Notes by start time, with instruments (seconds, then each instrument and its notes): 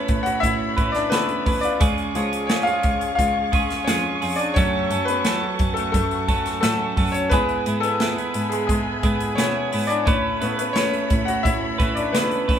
Already playing: grand piano C#3 A3 B3 C#4 B4 C#5, clean electric guitar A3 C#4 E4 B4, string section A4 C#5 E5 B5
0.08 cello A2, kick, closed hi-hat
0.23 grand piano F#4 F#5, closed hi-hat
0.40 cello A2, grand piano E4 E5, kick, closed hi-hat
0.77 cello A2, clean electric guitar C#4 E4 B4, kick, closed hi-hat
0.92 grand piano D4 D5, snare, closed hi-hat
1.10 cello C#3, clean electric guitar A3 C#4 E4, grand piano B4, snare, closed hi-hat
1.14 grand piano B3, clean electric guitar B4
1.29 closed hi-hat
1.46 cello D2, clean electric guitar C#4 E4 B4, kick, open hi-hat
1.61 grand piano F4 D5, closed hi-hat
1.80 cello C#2, clean electric guitar C#3 G#3 C#4 F4 G#4, string section G#4 F5 C#6, kick, closed hi-hat
1.98 closed hi-hat
2.15 cello C#2, grand piano F3 G#3 C#5, clean electric guitar C#4 F4 G#4, closed hi-hat
2.33 closed hi-hat
2.47 clean electric guitar G#3 C#4, grand piano C#5, snare, closed hi-hat
2.51 grand piano C#4, clean electric guitar F4 G#4
2.63 grand piano F5, closed hi-hat
2.67 grand piano F4
2.83 cello C#2, kick, closed hi-hat
3.01 closed hi-hat
3.15 cello C#2, grand piano F5, kick, closed hi-hat
3.19 grand piano F4
3.52 cello C#2, clean electric guitar C#4 F4 G#4, kick, closed hi-hat
3.70 snare, closed hi-hat
3.84 cello F2, clean electric guitar G#3 C#4, grand piano C#5, snare, closed hi-hat
3.88 grand piano C#4, clean electric guitar F4 G#4
4.22 cello F2, clean electric guitar C#4 F4 G#4, open hi-hat
4.36 grand piano D4 D5, closed hi-hat
4.54 cello F#2, clean electric guitar F#2 C#3 F#3 A3 C#4 A4, grand piano F#3 A3 C#5, string section A4 F#5, kick, closed hi-hat
4.58 grand piano C#4
4.91 cello F#2, clean electric guitar F#3 A3 C#4 A4, closed hi-hat
5.05 grand piano B4, closed hi-hat
5.10 grand piano B3
5.25 clean electric guitar F#3 A3 C#4 A4, snare, closed hi-hat
5.59 cello F#2, kick, closed hi-hat
5.74 grand piano A4, closed hi-hat
5.78 grand piano A3
5.92 cello F#2, grand piano A4, kick, closed hi-hat
5.96 grand piano A3
6.11 closed hi-hat
6.28 cello F#2, clean electric guitar F#3 A3 C#4 A4, kick, closed hi-hat
6.46 snare, closed hi-hat
6.61 cello A2, clean electric guitar F#3 A3 C#4, grand piano A3 A4, snare, closed hi-hat
6.65 clean electric guitar A4
6.97 cello F#2, clean electric guitar F#3 A3 C#4 A4, kick, open hi-hat
7.12 grand piano C#4 C#5, closed hi-hat
7.29 cello G#2, grand piano E3 G#3 B3 B4, clean electric guitar G#3 B3 E4, string section B4 E5 G#5 B5, kick, closed hi-hat
7.34 clean electric guitar G#4
7.49 closed hi-hat
7.66 cello G#2, clean electric guitar B3 E4 G#4, closed hi-hat
7.80 grand piano A4, closed hi-hat
7.84 grand piano B3
8.00 clean electric guitar G#3 B3 E4 G#4, snare, closed hi-hat
8.18 closed hi-hat
8.34 cello G#2, closed hi-hat
8.49 grand piano G#3 G#4, closed hi-hat
8.67 cello G#2, grand piano G#3 G#4, kick, closed hi-hat
9.03 cello G#2, clean electric guitar B3 E4 G#4, kick, closed hi-hat
9.20 closed hi-hat
9.35 cello B2, clean electric guitar G#3 B3 E4, grand piano C#4 C#5, snare, closed hi-hat
9.39 clean electric guitar G#4
9.72 cello G#2, clean electric guitar B3 E4 G#4, open hi-hat
9.87 grand piano D4 D5, closed hi-hat
10.05 cello A2, clean electric guitar A3 C#4 E4 B4, grand piano C#4 C#5, string section A4 C#5 B5, kick, closed hi-hat
10.40 cello A2, grand piano C#3 A3 B3, clean electric guitar C#4 E4 B4, closed hi-hat
10.57 grand piano B3 B4, closed hi-hat
10.73 clean electric guitar A3 C#4 E4, grand piano C#4 C#5, snare, closed hi-hat
10.78 clean electric guitar B4
10.93 closed hi-hat
11.10 cello A2, kick, closed hi-hat
11.25 grand piano F#4 F#5, closed hi-hat
11.43 cello A2, grand piano E4 E5, kick, closed hi-hat
11.78 cello A2, clean electric guitar C#4 E4 B4, kick, closed hi-hat
11.95 grand piano D4 D5, closed hi-hat
12.12 cello C#3, clean electric guitar A3 C#4 E4 B4, grand piano B3 B4, snare, closed hi-hat
12.31 closed hi-hat
12.48 cello D2, clean electric guitar C#4 E4 B4, kick, open hi-hat